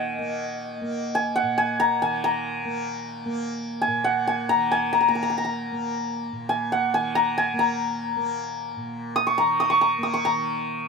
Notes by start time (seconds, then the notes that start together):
Already playing: A#2 D#3 A#3 D#5 F#5 G#5
0.19 A#3
0.81 A#3
1.15 G#5
1.36 F#5
1.43 A#2
1.58 G#5
1.80 A#5
2.02 D#3 G#5
2.24 A#5
2.65 A#3
3.25 A#3
3.81 G#5
3.88 A#2
4.04 F#5
4.27 G#5
4.49 D#3 A#5
4.71 G#5
4.93 A#5
5.01 A#5
5.08 A#3 A#5
5.15 A#5
5.23 A#5
5.30 A#5
5.38 A#5
5.45 A#5
5.72 A#3
6.32 A#2
6.49 G#5
6.72 F#5
6.93 D#3 G#5
7.15 A#5
7.38 G#5
7.54 A#3
7.59 A#5
8.16 A#3
8.76 A#2
9.16 D#6
9.27 C#6
9.38 D#3 A#5
9.60 D#6
9.70 C#6
9.81 A#5
9.98 A#3
10.03 D#6
10.14 C#6
10.25 D#3 A#5